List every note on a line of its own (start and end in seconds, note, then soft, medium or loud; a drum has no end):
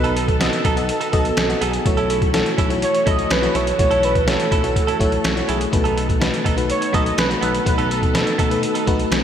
0.00 0.50 B1 loud
0.00 0.61 B2 medium
0.00 1.82 D#3 medium
0.00 0.40 B3 medium
0.00 1.82 B3 medium
0.00 0.40 F#4 medium
0.00 0.41 A4 medium
0.00 1.82 A4 medium
0.00 0.16 A4 medium
0.00 0.18 B4 medium
0.00 0.41 D#5 medium
0.04 0.15 B3 medium
0.04 0.16 D#4 medium
0.04 closed hi-hat soft
0.16 0.28 B3 medium
0.16 0.28 D#4 medium
0.16 0.40 A4 medium
0.16 0.27 A4 medium
0.16 closed hi-hat medium
0.28 muted clean electric guitar stroke soft
0.28 kick medium
0.28 closed hi-hat soft
0.40 0.65 B3 medium
0.40 0.66 F#4 medium
0.40 0.66 A4 medium
0.40 1.64 A4 loud
0.40 0.66 D#5 medium
0.40 snare loud
0.40 closed hi-hat medium
0.53 muted clean electric guitar stroke soft
0.53 closed hi-hat medium
0.64 0.91 B1 medium
0.64 0.80 B3 medium
0.64 0.77 D#4 medium
0.64 0.75 A4 medium
0.64 kick medium
0.64 closed hi-hat medium
0.76 1.02 B3 medium
0.76 1.02 F#4 medium
0.76 1.02 A4 medium
0.76 1.02 D#5 medium
0.76 muted clean electric guitar stroke soft
0.76 closed hi-hat medium
0.89 muted clean electric guitar stroke soft
0.89 closed hi-hat medium
1.01 1.11 B3 medium
1.01 1.12 D#4 medium
1.01 1.13 A4 medium
1.01 closed hi-hat medium
1.12 1.31 B1 medium
1.12 1.38 B3 medium
1.12 1.38 F#4 medium
1.12 1.38 A4 medium
1.12 1.39 D#5 medium
1.12 muted clean electric guitar stroke soft
1.12 kick medium
1.12 closed hi-hat medium
1.25 muted clean electric guitar stroke soft
1.25 closed hi-hat soft
1.37 1.55 B1 medium
1.37 muted clean electric guitar stroke soft
1.37 snare loud
1.37 closed hi-hat medium
1.49 1.74 B3 medium
1.49 1.74 F#4 medium
1.49 1.75 A4 medium
1.49 1.75 D#5 medium
1.49 muted clean electric guitar stroke soft
1.49 closed hi-hat soft
1.61 1.79 B1 loud
1.61 1.77 B3 medium
1.61 1.73 D#4 medium
1.61 1.88 G#4 medium
1.61 1.72 A4 medium
1.61 closed hi-hat medium
1.73 muted clean electric guitar stroke soft
1.73 closed hi-hat medium
1.85 2.43 B1 loud
1.85 2.54 B2 medium
1.85 5.69 E3 medium
1.85 2.19 A3 medium
1.85 5.69 A3 medium
1.85 2.19 E4 medium
1.85 5.69 F#4 medium
1.85 2.20 F#4 medium
1.85 2.58 A4 medium
1.85 2.20 C#5 medium
1.85 muted clean electric guitar stroke soft
1.85 kick loud
1.85 closed hi-hat medium
1.97 2.08 C#4 medium
1.97 2.09 E4 medium
1.97 2.10 A4 medium
1.97 closed hi-hat soft
2.09 2.22 C#4 medium
2.09 2.21 E4 medium
2.09 2.20 A4 medium
2.09 closed hi-hat medium
2.21 muted clean electric guitar stroke soft
2.21 kick medium
2.21 closed hi-hat soft
2.33 2.59 A3 medium
2.33 2.59 E4 medium
2.33 2.59 F#4 medium
2.33 2.60 A4 medium
2.33 snare loud
2.33 closed hi-hat medium
2.46 muted clean electric guitar stroke soft
2.46 closed hi-hat soft
2.58 2.84 B1 medium
2.58 2.73 C#4 medium
2.58 2.70 E4 medium
2.58 2.69 A4 medium
2.58 kick medium
2.58 closed hi-hat medium
2.69 2.95 A3 medium
2.69 2.95 E4 medium
2.69 2.96 F#4 medium
2.69 2.96 C#5 medium
2.69 muted clean electric guitar stroke soft
2.69 closed hi-hat medium
2.82 3.09 C#5 loud
2.82 muted clean electric guitar stroke soft
2.82 closed hi-hat medium
2.94 muted clean electric guitar stroke soft
2.94 closed hi-hat medium
3.06 3.24 B1 loud
3.06 3.31 A3 medium
3.06 3.22 C#4 medium
3.06 3.32 E4 medium
3.06 3.18 E4 medium
3.06 3.32 F#4 medium
3.06 3.17 A4 medium
3.06 3.32 C#5 medium
3.06 3.33 D#5 loud
3.06 kick medium
3.06 closed hi-hat medium
3.18 muted clean electric guitar stroke soft
3.18 closed hi-hat soft
3.30 3.48 B1 medium
3.30 3.57 B4 loud
3.30 snare loud
3.30 closed hi-hat medium
3.42 3.68 A3 medium
3.42 3.68 E4 medium
3.42 3.68 F#4 medium
3.42 3.68 C#5 medium
3.42 muted clean electric guitar stroke soft
3.42 closed hi-hat soft
3.54 3.72 B1 loud
3.54 3.70 C#4 medium
3.54 3.66 E4 medium
3.54 3.65 A4 medium
3.54 3.79 C#5 medium
3.54 closed hi-hat medium
3.67 muted clean electric guitar stroke soft
3.67 closed hi-hat soft
3.78 4.37 B1 loud
3.78 4.48 B2 medium
3.78 4.12 A3 medium
3.78 4.13 E4 medium
3.78 4.13 F#4 medium
3.78 4.13 C#5 medium
3.78 4.06 C#5 medium
3.78 muted clean electric guitar stroke soft
3.78 kick loud
3.78 closed hi-hat medium
3.91 4.02 C#4 medium
3.91 4.02 E4 medium
3.91 4.03 A4 medium
3.91 closed hi-hat soft
4.03 4.15 C#4 medium
4.03 4.15 E4 medium
4.03 4.14 A4 medium
4.03 4.27 B4 medium
4.03 closed hi-hat medium
4.15 muted clean electric guitar stroke soft
4.15 kick medium
4.15 closed hi-hat soft
4.26 4.52 A3 medium
4.26 4.53 E4 medium
4.26 4.53 F#4 medium
4.26 5.51 A4 loud
4.26 4.53 C#5 medium
4.26 snare loud
4.26 closed hi-hat medium
4.39 muted clean electric guitar stroke soft
4.39 closed hi-hat medium
4.51 4.78 B1 medium
4.51 4.67 C#4 medium
4.51 4.63 E4 medium
4.51 4.62 A4 medium
4.51 kick medium
4.51 closed hi-hat medium
4.63 4.89 A3 medium
4.63 4.89 E4 medium
4.63 4.89 F#4 medium
4.63 4.89 C#5 medium
4.63 muted clean electric guitar stroke soft
4.63 closed hi-hat medium
4.75 muted clean electric guitar stroke soft
4.75 kick medium
4.75 closed hi-hat medium
4.87 4.98 C#4 medium
4.87 4.99 E4 medium
4.87 5.00 A4 medium
4.87 closed hi-hat medium
4.99 5.18 B1 medium
4.99 5.25 A3 medium
4.99 5.25 E4 medium
4.99 5.25 F#4 medium
4.99 5.26 C#5 medium
4.99 kick medium
4.99 closed hi-hat medium
5.12 muted clean electric guitar stroke soft
5.12 closed hi-hat soft
5.24 5.42 B1 medium
5.24 muted clean electric guitar stroke soft
5.24 snare loud
5.24 closed hi-hat medium
5.36 5.61 A3 medium
5.36 5.62 E4 medium
5.36 5.62 F#4 medium
5.36 5.62 C#5 medium
5.36 muted clean electric guitar stroke soft
5.36 closed hi-hat soft
5.48 5.66 B1 loud
5.48 5.64 C#4 medium
5.48 5.60 E4 medium
5.48 5.75 G#4 medium
5.48 5.59 A4 medium
5.48 closed hi-hat medium
5.60 muted clean electric guitar stroke soft
5.60 closed hi-hat soft
5.72 6.30 B1 loud
5.72 6.41 B2 medium
5.72 9.23 D#3 medium
5.72 6.06 A3 medium
5.72 9.23 B3 medium
5.72 6.06 D#4 medium
5.72 6.06 F#4 medium
5.72 9.23 A4 medium
5.72 6.46 A4 medium
5.72 6.07 B4 medium
5.72 muted clean electric guitar stroke soft
5.72 kick loud
5.72 closed hi-hat medium
5.84 5.95 B3 medium
5.84 5.96 D#4 medium
5.84 5.96 A4 medium
5.84 closed hi-hat soft
5.96 6.09 B3 medium
5.96 6.08 D#4 medium
5.96 6.07 A4 medium
5.96 closed hi-hat medium
6.09 kick medium
6.09 closed hi-hat soft
6.20 6.46 A3 medium
6.20 6.46 D#4 medium
6.20 6.46 F#4 medium
6.20 6.46 B4 medium
6.20 snare loud
6.20 closed hi-hat medium
6.33 muted clean electric guitar stroke soft
6.33 closed hi-hat soft
6.44 6.72 B1 medium
6.44 6.60 B3 medium
6.44 6.57 D#4 medium
6.44 6.56 A4 medium
6.44 kick medium
6.44 closed hi-hat medium
6.56 6.82 A3 medium
6.56 6.82 D#4 medium
6.56 6.82 F#4 medium
6.56 6.83 B4 medium
6.56 muted clean electric guitar stroke soft
6.56 closed hi-hat medium
6.69 6.96 C#5 loud
6.69 muted clean electric guitar stroke soft
6.69 closed hi-hat medium
6.81 muted clean electric guitar stroke soft
6.81 closed hi-hat medium
6.93 7.11 B1 medium
6.93 7.18 A3 medium
6.93 7.09 B3 medium
6.93 7.19 D#4 medium
6.93 7.05 D#4 medium
6.93 7.19 F#4 medium
6.93 7.04 A4 medium
6.93 7.19 B4 medium
6.93 7.18 D#5 loud
6.93 kick medium
6.93 closed hi-hat medium
7.05 muted clean electric guitar stroke soft
7.05 closed hi-hat soft
7.18 7.35 B1 medium
7.18 7.29 B4 medium
7.18 snare loud
7.18 closed hi-hat medium
7.29 7.55 A3 medium
7.29 7.55 D#4 medium
7.29 7.55 F#4 medium
7.29 7.55 B4 medium
7.29 muted clean electric guitar stroke soft
7.29 closed hi-hat soft
7.41 7.60 B1 loud
7.41 7.57 B3 medium
7.41 7.54 D#4 medium
7.41 7.52 A4 medium
7.41 7.65 B4 medium
7.41 closed hi-hat medium
7.54 muted clean electric guitar stroke soft
7.54 closed hi-hat soft
7.65 8.24 B1 loud
7.65 8.34 B2 medium
7.65 7.99 A3 medium
7.65 8.00 D#4 medium
7.65 8.00 F#4 medium
7.65 8.00 B4 medium
7.65 7.93 B4 medium
7.65 muted clean electric guitar stroke soft
7.65 kick loud
7.65 closed hi-hat loud
7.78 7.89 B3 medium
7.78 7.90 D#4 medium
7.78 7.90 A4 medium
7.78 closed hi-hat soft
7.90 8.02 B3 medium
7.90 8.02 D#4 medium
7.90 8.15 A4 medium
7.90 8.01 A4 medium
7.90 closed hi-hat medium
8.02 muted clean electric guitar stroke soft
8.02 kick medium
8.02 closed hi-hat soft
8.13 8.39 A3 medium
8.13 8.39 D#4 medium
8.13 8.40 F#4 medium
8.13 9.23 A4 medium
8.13 8.40 B4 medium
8.13 snare loud
8.13 closed hi-hat medium
8.26 muted clean electric guitar stroke soft
8.26 closed hi-hat soft
8.38 8.65 B1 medium
8.38 8.54 B3 medium
8.38 8.50 D#4 medium
8.38 8.49 A4 medium
8.38 kick medium
8.38 closed hi-hat medium
8.50 8.76 A3 medium
8.50 8.76 D#4 medium
8.50 8.76 F#4 medium
8.50 8.76 B4 medium
8.50 muted clean electric guitar stroke soft
8.50 closed hi-hat medium
8.63 muted clean electric guitar stroke soft
8.63 closed hi-hat medium
8.75 8.86 B3 medium
8.75 8.86 D#4 medium
8.75 8.87 A4 medium
8.75 closed hi-hat medium
8.86 9.05 B1 medium
8.86 9.12 A3 medium
8.86 9.12 D#4 medium
8.86 9.12 F#4 medium
8.86 9.13 B4 medium
8.86 muted clean electric guitar stroke soft
8.86 kick medium
8.86 closed hi-hat medium
8.99 muted clean electric guitar stroke soft
8.99 closed hi-hat soft
9.11 9.23 B1 medium
9.11 muted clean electric guitar stroke soft
9.11 snare loud
9.11 closed hi-hat medium